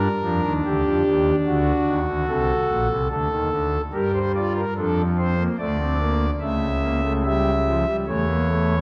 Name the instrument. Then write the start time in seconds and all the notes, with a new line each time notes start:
pipe organ
Already playing: A#4
0.22 F2 F3 D4
0.43 D#2 D#3
0.64 D2 D3 G4
0.84 F2 F3
1.06 D#2 D#3
1.47 D2 D3 F#4
1.88 D#2 D#3
2.06 D2 D3
2.27 C2 C3 A4
2.69 A#1 A#2
2.89 C2 C3
3.10 D2 D3 A4
3.31 D#2 D#3
3.52 D2 D3
3.93 G2 G3 G4 A#4
4.14 C5
4.35 F4 D5
4.56 A#4
4.76 F2 F3 D4 A4
5.17 C4 C5
5.39 A#3
5.58 D2 D3 A3 D5
5.79 C4
6.00 A#3
6.40 C#2 C#3 A3 E5
6.82 A#3
7.04 A3
7.24 G3 E5
7.67 F3
7.86 G3
8.07 E2 E3 A3 C#5
8.28 A#3
8.48 A3